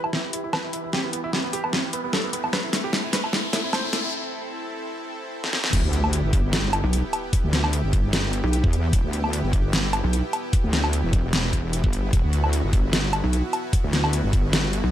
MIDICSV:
0, 0, Header, 1, 8, 480
1, 0, Start_track
1, 0, Key_signature, 1, "minor"
1, 0, Tempo, 400000
1, 1117, Time_signature, 4, 2, 24, 8
1, 17896, End_track
2, 0, Start_track
2, 0, Title_t, "Supersaw synth"
2, 0, Program_c, 0, 81
2, 0, Note_on_c, 0, 52, 74
2, 0, Note_on_c, 0, 64, 67
2, 0, Note_on_c, 0, 67, 68
2, 0, Note_on_c, 0, 71, 69
2, 0, Note_on_c, 0, 83, 84
2, 2999, Note_off_c, 0, 64, 0
2, 2999, Note_off_c, 0, 67, 0
2, 2999, Note_off_c, 0, 83, 0
2, 3000, Note_off_c, 0, 52, 0
2, 3000, Note_off_c, 0, 71, 0
2, 3037, Note_on_c, 0, 64, 71
2, 3037, Note_on_c, 0, 69, 84
2, 3038, Note_on_c, 0, 60, 76
2, 6838, Note_off_c, 0, 69, 0
2, 6839, Note_off_c, 0, 60, 0
2, 6839, Note_off_c, 0, 64, 0
2, 6875, Note_on_c, 0, 59, 77
2, 6876, Note_on_c, 0, 64, 71
2, 6876, Note_on_c, 0, 67, 87
2, 14535, Note_off_c, 0, 67, 0
2, 14556, Note_on_c, 0, 66, 84
2, 17896, Note_off_c, 0, 59, 0
2, 17896, Note_off_c, 0, 64, 0
2, 17896, Note_off_c, 0, 66, 0
2, 17896, End_track
3, 0, Start_track
3, 0, Title_t, "Grand piano"
3, 0, Program_c, 1, 0
3, 47, Note_on_c, 1, 64, 62
3, 106, Note_off_c, 1, 64, 0
3, 158, Note_on_c, 1, 64, 62
3, 227, Note_off_c, 1, 64, 0
3, 399, Note_on_c, 1, 64, 59
3, 467, Note_off_c, 1, 64, 0
3, 528, Note_on_c, 1, 64, 59
3, 587, Note_off_c, 1, 64, 0
3, 637, Note_on_c, 1, 71, 85
3, 707, Note_off_c, 1, 71, 0
3, 766, Note_on_c, 1, 64, 59
3, 826, Note_off_c, 1, 64, 0
3, 878, Note_on_c, 1, 64, 60
3, 947, Note_off_c, 1, 64, 0
3, 1005, Note_on_c, 1, 64, 61
3, 1065, Note_off_c, 1, 64, 0
3, 1116, Note_on_c, 1, 67, 90
3, 1186, Note_off_c, 1, 67, 0
3, 1246, Note_on_c, 1, 59, 61
3, 1306, Note_off_c, 1, 59, 0
3, 1357, Note_on_c, 1, 59, 62
3, 1427, Note_off_c, 1, 59, 0
3, 1487, Note_on_c, 1, 64, 92
3, 1546, Note_off_c, 1, 64, 0
3, 1596, Note_on_c, 1, 59, 61
3, 1666, Note_off_c, 1, 59, 0
3, 1727, Note_on_c, 1, 59, 61
3, 1786, Note_off_c, 1, 59, 0
3, 1838, Note_on_c, 1, 67, 92
3, 1907, Note_off_c, 1, 67, 0
3, 1966, Note_on_c, 1, 59, 65
3, 2026, Note_off_c, 1, 59, 0
3, 2079, Note_on_c, 1, 59, 64
3, 2148, Note_off_c, 1, 59, 0
3, 2318, Note_on_c, 1, 59, 62
3, 2387, Note_off_c, 1, 59, 0
3, 2448, Note_on_c, 1, 59, 63
3, 2507, Note_off_c, 1, 59, 0
3, 2557, Note_on_c, 1, 69, 87
3, 2626, Note_off_c, 1, 69, 0
3, 2686, Note_on_c, 1, 59, 60
3, 2746, Note_off_c, 1, 59, 0
3, 2796, Note_on_c, 1, 59, 61
3, 2866, Note_off_c, 1, 59, 0
3, 2927, Note_on_c, 1, 59, 61
3, 2986, Note_off_c, 1, 59, 0
3, 3037, Note_on_c, 1, 71, 94
3, 3106, Note_off_c, 1, 71, 0
3, 3168, Note_on_c, 1, 64, 63
3, 3227, Note_off_c, 1, 64, 0
3, 3279, Note_on_c, 1, 64, 62
3, 3347, Note_off_c, 1, 64, 0
3, 3408, Note_on_c, 1, 67, 92
3, 3467, Note_off_c, 1, 67, 0
3, 3520, Note_on_c, 1, 64, 63
3, 3588, Note_off_c, 1, 64, 0
3, 3648, Note_on_c, 1, 64, 63
3, 3707, Note_off_c, 1, 64, 0
3, 3760, Note_on_c, 1, 71, 92
3, 3828, Note_off_c, 1, 71, 0
3, 3887, Note_on_c, 1, 64, 64
3, 3947, Note_off_c, 1, 64, 0
3, 3999, Note_on_c, 1, 64, 64
3, 4067, Note_off_c, 1, 64, 0
3, 4239, Note_on_c, 1, 64, 65
3, 4307, Note_off_c, 1, 64, 0
3, 4368, Note_on_c, 1, 64, 64
3, 4427, Note_off_c, 1, 64, 0
3, 4479, Note_on_c, 1, 72, 92
3, 4547, Note_off_c, 1, 72, 0
3, 4610, Note_on_c, 1, 64, 65
3, 4668, Note_off_c, 1, 64, 0
3, 4718, Note_on_c, 1, 64, 64
3, 4787, Note_off_c, 1, 64, 0
3, 4848, Note_on_c, 1, 64, 63
3, 4907, Note_off_c, 1, 64, 0
3, 17896, End_track
4, 0, Start_track
4, 0, Title_t, "Wobble bass"
4, 0, Program_c, 2, 39
4, 8205, Note_on_c, 2, 35, 96
4, 8425, Note_off_c, 2, 35, 0
4, 10126, Note_on_c, 2, 35, 98
4, 10345, Note_off_c, 2, 35, 0
4, 12045, Note_on_c, 2, 35, 99
4, 12265, Note_off_c, 2, 35, 0
4, 15886, Note_on_c, 2, 35, 96
4, 16105, Note_off_c, 2, 35, 0
4, 17805, Note_on_c, 2, 35, 98
4, 17896, Note_off_c, 2, 35, 0
4, 17896, End_track
5, 0, Start_track
5, 0, Title_t, "Wobble bass"
5, 0, Program_c, 3, 39
5, 6877, Note_on_c, 3, 28, 98
5, 6985, Note_off_c, 3, 28, 0
5, 7006, Note_on_c, 3, 38, 95
5, 7465, Note_off_c, 3, 38, 0
5, 7486, Note_on_c, 3, 31, 100
5, 8185, Note_off_c, 3, 31, 0
5, 8925, Note_on_c, 3, 38, 95
5, 9385, Note_off_c, 3, 38, 0
5, 9406, Note_on_c, 3, 31, 99
5, 10105, Note_off_c, 3, 31, 0
5, 10366, Note_on_c, 3, 40, 96
5, 10699, Note_off_c, 3, 40, 0
5, 10718, Note_on_c, 3, 28, 99
5, 10826, Note_off_c, 3, 28, 0
5, 10847, Note_on_c, 3, 38, 101
5, 11306, Note_off_c, 3, 38, 0
5, 11326, Note_on_c, 3, 31, 98
5, 12026, Note_off_c, 3, 31, 0
5, 12767, Note_on_c, 3, 38, 97
5, 13226, Note_off_c, 3, 38, 0
5, 13245, Note_on_c, 3, 28, 97
5, 14185, Note_off_c, 3, 28, 0
5, 14206, Note_on_c, 3, 31, 97
5, 14540, Note_off_c, 3, 31, 0
5, 14557, Note_on_c, 3, 28, 96
5, 14665, Note_off_c, 3, 28, 0
5, 14685, Note_on_c, 3, 38, 98
5, 15145, Note_off_c, 3, 38, 0
5, 15166, Note_on_c, 3, 31, 99
5, 15865, Note_off_c, 3, 31, 0
5, 16605, Note_on_c, 3, 38, 97
5, 17065, Note_off_c, 3, 38, 0
5, 17086, Note_on_c, 3, 31, 96
5, 17785, Note_off_c, 3, 31, 0
5, 17896, End_track
6, 0, Start_track
6, 0, Title_t, "Riser"
6, 0, Program_c, 4, 103
6, 0, Note_on_c, 4, 60, 76
6, 4957, Note_off_c, 4, 60, 0
6, 17896, End_track
7, 0, Start_track
7, 0, Title_t, "Sub drop"
7, 0, Program_c, 5, 103
7, 6876, Note_on_c, 5, 60, 75
7, 8797, Note_off_c, 5, 60, 0
7, 17896, End_track
8, 0, Start_track
8, 0, Title_t, "Drums"
8, 47, Note_on_c, 9, 77, 50
8, 158, Note_on_c, 9, 38, 50
8, 167, Note_off_c, 9, 77, 0
8, 278, Note_off_c, 9, 38, 0
8, 398, Note_on_c, 9, 42, 78
8, 518, Note_off_c, 9, 42, 0
8, 637, Note_on_c, 9, 38, 52
8, 637, Note_on_c, 9, 77, 71
8, 757, Note_off_c, 9, 38, 0
8, 757, Note_off_c, 9, 77, 0
8, 878, Note_on_c, 9, 42, 78
8, 998, Note_off_c, 9, 42, 0
8, 1118, Note_on_c, 9, 38, 57
8, 1238, Note_off_c, 9, 38, 0
8, 1357, Note_on_c, 9, 42, 79
8, 1477, Note_off_c, 9, 42, 0
8, 1598, Note_on_c, 9, 38, 60
8, 1718, Note_off_c, 9, 38, 0
8, 1838, Note_on_c, 9, 42, 80
8, 1958, Note_off_c, 9, 42, 0
8, 1966, Note_on_c, 9, 77, 49
8, 2077, Note_on_c, 9, 38, 62
8, 2086, Note_off_c, 9, 77, 0
8, 2197, Note_off_c, 9, 38, 0
8, 2317, Note_on_c, 9, 42, 82
8, 2437, Note_off_c, 9, 42, 0
8, 2557, Note_on_c, 9, 38, 66
8, 2677, Note_off_c, 9, 38, 0
8, 2798, Note_on_c, 9, 42, 83
8, 2918, Note_off_c, 9, 42, 0
8, 2926, Note_on_c, 9, 77, 49
8, 3037, Note_on_c, 9, 38, 72
8, 3046, Note_off_c, 9, 77, 0
8, 3157, Note_off_c, 9, 38, 0
8, 3277, Note_on_c, 9, 38, 74
8, 3277, Note_on_c, 9, 42, 77
8, 3397, Note_off_c, 9, 38, 0
8, 3397, Note_off_c, 9, 42, 0
8, 3516, Note_on_c, 9, 38, 78
8, 3636, Note_off_c, 9, 38, 0
8, 3757, Note_on_c, 9, 38, 78
8, 3757, Note_on_c, 9, 42, 80
8, 3877, Note_off_c, 9, 38, 0
8, 3877, Note_off_c, 9, 42, 0
8, 3886, Note_on_c, 9, 77, 48
8, 3997, Note_on_c, 9, 38, 81
8, 4006, Note_off_c, 9, 77, 0
8, 4117, Note_off_c, 9, 38, 0
8, 4238, Note_on_c, 9, 38, 82
8, 4238, Note_on_c, 9, 42, 82
8, 4358, Note_off_c, 9, 38, 0
8, 4358, Note_off_c, 9, 42, 0
8, 4477, Note_on_c, 9, 38, 83
8, 4477, Note_on_c, 9, 77, 73
8, 4597, Note_off_c, 9, 38, 0
8, 4597, Note_off_c, 9, 77, 0
8, 4716, Note_on_c, 9, 38, 89
8, 4716, Note_on_c, 9, 42, 81
8, 4836, Note_off_c, 9, 38, 0
8, 4836, Note_off_c, 9, 42, 0
8, 6525, Note_on_c, 9, 38, 52
8, 6637, Note_off_c, 9, 38, 0
8, 6637, Note_on_c, 9, 38, 78
8, 6757, Note_off_c, 9, 38, 0
8, 6765, Note_on_c, 9, 38, 83
8, 6876, Note_on_c, 9, 42, 83
8, 6876, Note_on_c, 9, 49, 105
8, 6877, Note_on_c, 9, 36, 122
8, 6885, Note_off_c, 9, 38, 0
8, 6996, Note_off_c, 9, 42, 0
8, 6996, Note_off_c, 9, 49, 0
8, 6997, Note_off_c, 9, 36, 0
8, 7116, Note_on_c, 9, 42, 54
8, 7236, Note_off_c, 9, 42, 0
8, 7245, Note_on_c, 9, 77, 53
8, 7355, Note_on_c, 9, 42, 82
8, 7365, Note_off_c, 9, 77, 0
8, 7475, Note_off_c, 9, 42, 0
8, 7596, Note_on_c, 9, 36, 104
8, 7596, Note_on_c, 9, 42, 55
8, 7716, Note_off_c, 9, 36, 0
8, 7716, Note_off_c, 9, 42, 0
8, 7836, Note_on_c, 9, 38, 117
8, 7836, Note_on_c, 9, 42, 83
8, 7956, Note_off_c, 9, 38, 0
8, 7956, Note_off_c, 9, 42, 0
8, 8076, Note_on_c, 9, 42, 57
8, 8076, Note_on_c, 9, 77, 82
8, 8196, Note_off_c, 9, 42, 0
8, 8196, Note_off_c, 9, 77, 0
8, 8316, Note_on_c, 9, 42, 81
8, 8436, Note_off_c, 9, 42, 0
8, 8557, Note_on_c, 9, 42, 56
8, 8557, Note_on_c, 9, 77, 61
8, 8677, Note_off_c, 9, 42, 0
8, 8677, Note_off_c, 9, 77, 0
8, 8796, Note_on_c, 9, 36, 122
8, 8796, Note_on_c, 9, 42, 84
8, 8916, Note_off_c, 9, 36, 0
8, 8916, Note_off_c, 9, 42, 0
8, 9036, Note_on_c, 9, 38, 65
8, 9036, Note_on_c, 9, 42, 56
8, 9156, Note_off_c, 9, 38, 0
8, 9156, Note_off_c, 9, 42, 0
8, 9166, Note_on_c, 9, 77, 52
8, 9276, Note_on_c, 9, 42, 82
8, 9286, Note_off_c, 9, 77, 0
8, 9396, Note_off_c, 9, 42, 0
8, 9517, Note_on_c, 9, 36, 107
8, 9517, Note_on_c, 9, 42, 55
8, 9637, Note_off_c, 9, 36, 0
8, 9637, Note_off_c, 9, 42, 0
8, 9757, Note_on_c, 9, 38, 123
8, 9757, Note_on_c, 9, 42, 85
8, 9877, Note_off_c, 9, 38, 0
8, 9877, Note_off_c, 9, 42, 0
8, 9997, Note_on_c, 9, 42, 57
8, 10117, Note_off_c, 9, 42, 0
8, 10237, Note_on_c, 9, 42, 82
8, 10357, Note_off_c, 9, 42, 0
8, 10366, Note_on_c, 9, 36, 108
8, 10477, Note_on_c, 9, 42, 57
8, 10486, Note_off_c, 9, 36, 0
8, 10597, Note_off_c, 9, 42, 0
8, 10717, Note_on_c, 9, 36, 127
8, 10717, Note_on_c, 9, 42, 80
8, 10837, Note_off_c, 9, 36, 0
8, 10837, Note_off_c, 9, 42, 0
8, 10958, Note_on_c, 9, 42, 53
8, 11078, Note_off_c, 9, 42, 0
8, 11087, Note_on_c, 9, 77, 52
8, 11199, Note_on_c, 9, 42, 81
8, 11207, Note_off_c, 9, 77, 0
8, 11319, Note_off_c, 9, 42, 0
8, 11437, Note_on_c, 9, 36, 107
8, 11438, Note_on_c, 9, 42, 54
8, 11557, Note_off_c, 9, 36, 0
8, 11558, Note_off_c, 9, 42, 0
8, 11678, Note_on_c, 9, 38, 127
8, 11678, Note_on_c, 9, 42, 80
8, 11798, Note_off_c, 9, 38, 0
8, 11798, Note_off_c, 9, 42, 0
8, 11918, Note_on_c, 9, 42, 57
8, 11918, Note_on_c, 9, 77, 77
8, 12038, Note_off_c, 9, 42, 0
8, 12038, Note_off_c, 9, 77, 0
8, 12158, Note_on_c, 9, 42, 80
8, 12278, Note_off_c, 9, 42, 0
8, 12398, Note_on_c, 9, 42, 54
8, 12398, Note_on_c, 9, 77, 60
8, 12518, Note_off_c, 9, 42, 0
8, 12518, Note_off_c, 9, 77, 0
8, 12637, Note_on_c, 9, 36, 127
8, 12637, Note_on_c, 9, 42, 81
8, 12757, Note_off_c, 9, 36, 0
8, 12757, Note_off_c, 9, 42, 0
8, 12876, Note_on_c, 9, 38, 63
8, 12876, Note_on_c, 9, 42, 51
8, 12996, Note_off_c, 9, 38, 0
8, 12996, Note_off_c, 9, 42, 0
8, 13006, Note_on_c, 9, 77, 53
8, 13117, Note_on_c, 9, 42, 79
8, 13126, Note_off_c, 9, 77, 0
8, 13237, Note_off_c, 9, 42, 0
8, 13357, Note_on_c, 9, 36, 110
8, 13357, Note_on_c, 9, 42, 53
8, 13477, Note_off_c, 9, 36, 0
8, 13477, Note_off_c, 9, 42, 0
8, 13596, Note_on_c, 9, 38, 120
8, 13596, Note_on_c, 9, 42, 77
8, 13716, Note_off_c, 9, 38, 0
8, 13716, Note_off_c, 9, 42, 0
8, 13836, Note_on_c, 9, 42, 52
8, 13837, Note_on_c, 9, 36, 62
8, 13956, Note_off_c, 9, 42, 0
8, 13957, Note_off_c, 9, 36, 0
8, 14078, Note_on_c, 9, 42, 77
8, 14198, Note_off_c, 9, 42, 0
8, 14206, Note_on_c, 9, 36, 106
8, 14317, Note_on_c, 9, 42, 51
8, 14326, Note_off_c, 9, 36, 0
8, 14437, Note_off_c, 9, 42, 0
8, 14557, Note_on_c, 9, 36, 123
8, 14557, Note_on_c, 9, 42, 75
8, 14677, Note_off_c, 9, 36, 0
8, 14677, Note_off_c, 9, 42, 0
8, 14796, Note_on_c, 9, 42, 49
8, 14916, Note_off_c, 9, 42, 0
8, 14925, Note_on_c, 9, 77, 55
8, 15036, Note_on_c, 9, 42, 78
8, 15045, Note_off_c, 9, 77, 0
8, 15156, Note_off_c, 9, 42, 0
8, 15276, Note_on_c, 9, 42, 52
8, 15277, Note_on_c, 9, 36, 106
8, 15396, Note_off_c, 9, 42, 0
8, 15397, Note_off_c, 9, 36, 0
8, 15516, Note_on_c, 9, 38, 118
8, 15516, Note_on_c, 9, 42, 75
8, 15636, Note_off_c, 9, 38, 0
8, 15636, Note_off_c, 9, 42, 0
8, 15756, Note_on_c, 9, 42, 51
8, 15756, Note_on_c, 9, 77, 82
8, 15876, Note_off_c, 9, 42, 0
8, 15876, Note_off_c, 9, 77, 0
8, 15997, Note_on_c, 9, 42, 72
8, 16117, Note_off_c, 9, 42, 0
8, 16237, Note_on_c, 9, 42, 51
8, 16237, Note_on_c, 9, 77, 62
8, 16357, Note_off_c, 9, 42, 0
8, 16357, Note_off_c, 9, 77, 0
8, 16477, Note_on_c, 9, 36, 119
8, 16477, Note_on_c, 9, 42, 76
8, 16597, Note_off_c, 9, 36, 0
8, 16597, Note_off_c, 9, 42, 0
8, 16718, Note_on_c, 9, 38, 58
8, 16718, Note_on_c, 9, 42, 50
8, 16838, Note_off_c, 9, 38, 0
8, 16838, Note_off_c, 9, 42, 0
8, 16846, Note_on_c, 9, 77, 57
8, 16957, Note_on_c, 9, 42, 77
8, 16966, Note_off_c, 9, 77, 0
8, 17077, Note_off_c, 9, 42, 0
8, 17197, Note_on_c, 9, 36, 100
8, 17197, Note_on_c, 9, 42, 52
8, 17317, Note_off_c, 9, 36, 0
8, 17317, Note_off_c, 9, 42, 0
8, 17437, Note_on_c, 9, 38, 115
8, 17437, Note_on_c, 9, 42, 76
8, 17557, Note_off_c, 9, 38, 0
8, 17557, Note_off_c, 9, 42, 0
8, 17678, Note_on_c, 9, 42, 51
8, 17798, Note_off_c, 9, 42, 0
8, 17896, End_track
0, 0, End_of_file